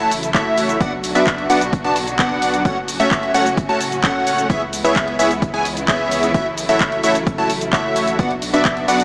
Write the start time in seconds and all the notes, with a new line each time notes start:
Already playing: C#3 E3 F#3 A3 E4
0.00 A1 A3 E4 F#4 C#5 A5
0.11 open hi-hat, shaker
0.23 closed hi-hat, shaker
0.34 A1 A3 E4 F#4 C#5 E5, kick, clap, closed hi-hat, shaker
0.58 open hi-hat, shaker
0.69 closed hi-hat, shaker
0.80 B1 B2 D3 B3 D4 F#4 D5 F#5, kick, closed hi-hat, shaker
1.04 open hi-hat, shaker
1.15 B1 B3 D4 F#4 D5 E5, closed hi-hat, shaker
1.27 kick, clap, closed hi-hat, shaker
1.38 closed hi-hat
1.50 B1 B3 D4 F#4 D5 F#5, open hi-hat, shaker
1.61 closed hi-hat, shaker
1.73 kick, closed hi-hat, shaker
1.84 B1 B3 D4 F#4 D5 A5, closed hi-hat
1.96 open hi-hat, shaker
2.07 closed hi-hat, shaker
2.19 B1 B3 D4 F#4 D5 F#5, kick, clap, closed hi-hat, shaker
2.42 open hi-hat, shaker
2.54 closed hi-hat, shaker
2.65 F#1 A2 C#3 A3 C#4 F#4 C#5 F#5, kick, closed hi-hat, shaker
2.88 open hi-hat, shaker
3.00 F#1 A3 C#4 F#4 C#5 E5, closed hi-hat, shaker
3.11 kick, clap, closed hi-hat, shaker
3.23 closed hi-hat
3.34 F#1 A3 C#4 F#4 C#5 F#5, open hi-hat, shaker
3.46 closed hi-hat, shaker
3.57 kick, closed hi-hat, shaker
3.69 F#1 A3 C#4 F#4 C#5 A5, closed hi-hat
3.81 open hi-hat, shaker
3.92 closed hi-hat, shaker
4.04 F#1 A3 C#4 F#4 C#5 F#5, kick, clap, closed hi-hat, shaker
4.27 open hi-hat, shaker
4.38 closed hi-hat, shaker
4.50 C#2 C#3 E3 G#3 B3 E4 G#4 C#5 E5, kick, closed hi-hat, shaker
4.73 open hi-hat, shaker
4.84 C#2 B3 E4 G#4 C#5 E5, closed hi-hat, shaker
4.96 kick, clap, closed hi-hat, shaker
5.08 closed hi-hat
5.19 C#2 B3 E4 G#4 C#5 E5, open hi-hat, shaker
5.31 closed hi-hat, shaker
5.42 kick, closed hi-hat, shaker
5.54 C#2 B3 E4 G#4 C#5 G#5, closed hi-hat
5.65 open hi-hat, shaker
5.77 closed hi-hat, shaker
5.88 C#2 B3 E4 G#4 C#5 E5, kick, clap, closed hi-hat, shaker
6.11 open hi-hat, shaker
6.23 closed hi-hat, shaker
6.34 A1 F#3 A3 E4 F#4 C#5 E5, kick, closed hi-hat, shaker
6.58 open hi-hat, shaker
6.69 A1 A3 E4 F#4 C#5 E5, closed hi-hat, shaker
6.80 kick, clap, closed hi-hat, shaker
6.92 closed hi-hat
7.04 A1 A3 E4 F#4 C#5 E5, open hi-hat, shaker
7.15 closed hi-hat, shaker
7.27 kick, closed hi-hat, shaker
7.38 A1 A3 E4 F#4 C#5 A5, closed hi-hat
7.50 open hi-hat, shaker
7.61 closed hi-hat, shaker
7.73 A1 A3 E4 F#4 C#5 E5, kick, clap, closed hi-hat, shaker
7.96 open hi-hat, shaker
8.07 closed hi-hat, shaker
8.19 B1 B2 D3 F#3 B3 D4 F#4 D5 F#5, kick, closed hi-hat, shaker
8.31 closed hi-hat
8.42 open hi-hat, shaker
8.54 B1 B3 D4 F#4 D5 E5, closed hi-hat, shaker
8.65 kick, clap, closed hi-hat, shaker
8.77 closed hi-hat
8.88 B1 B3 D4 F#4 D5 F#5, open hi-hat, shaker
9.00 closed hi-hat, shaker